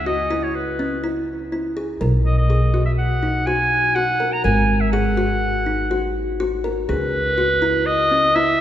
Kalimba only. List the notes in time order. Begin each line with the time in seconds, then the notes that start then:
0.06 F#4
0.31 E4
0.79 C#4
1.04 E4
1.52 E4
1.77 G#4
2.01 A#4
2.50 G#4
2.74 F#4
3.23 D#4
3.47 F#4
3.96 F#4
4.20 A#4
4.44 A#4
4.93 G#4
5.17 F#4
5.66 D#4
5.91 F#4
6.40 F#4
6.64 A#4
6.89 G#4
7.38 F#4
7.62 E4
8.11 C#4
8.36 E4